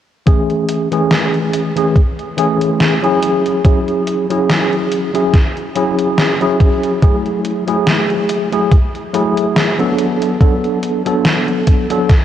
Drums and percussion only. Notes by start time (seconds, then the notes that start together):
0.27 kick, closed hi-hat
0.50 closed hi-hat
0.69 closed hi-hat
0.92 closed hi-hat
1.11 snare, closed hi-hat
1.34 closed hi-hat
1.53 closed hi-hat
1.77 closed hi-hat
1.96 kick, closed hi-hat
2.19 closed hi-hat
2.38 closed hi-hat
2.61 closed hi-hat
2.80 snare, closed hi-hat
3.04 closed hi-hat
3.23 closed hi-hat
3.46 closed hi-hat
3.65 kick, closed hi-hat
3.88 closed hi-hat
4.07 closed hi-hat
4.30 closed hi-hat
4.50 snare, closed hi-hat
4.73 closed hi-hat
4.92 closed hi-hat
5.15 closed hi-hat
5.34 kick, snare, closed hi-hat
5.57 closed hi-hat
5.76 closed hi-hat
5.99 closed hi-hat
6.18 snare, closed hi-hat
6.41 closed hi-hat
6.60 kick, closed hi-hat
6.84 closed hi-hat
7.03 kick, closed hi-hat
7.26 closed hi-hat
7.45 closed hi-hat
7.68 closed hi-hat
7.87 snare, closed hi-hat
8.10 closed hi-hat
8.29 closed hi-hat
8.52 closed hi-hat
8.72 kick, closed hi-hat
8.95 closed hi-hat
9.14 closed hi-hat
9.37 closed hi-hat
9.56 snare, closed hi-hat
9.79 closed hi-hat
9.98 closed hi-hat
10.22 closed hi-hat
10.40 kick, closed hi-hat
10.64 closed hi-hat
10.83 closed hi-hat
11.06 closed hi-hat
11.25 snare, closed hi-hat
11.48 closed hi-hat
11.67 kick, closed hi-hat
11.90 closed hi-hat
12.09 kick, snare, closed hi-hat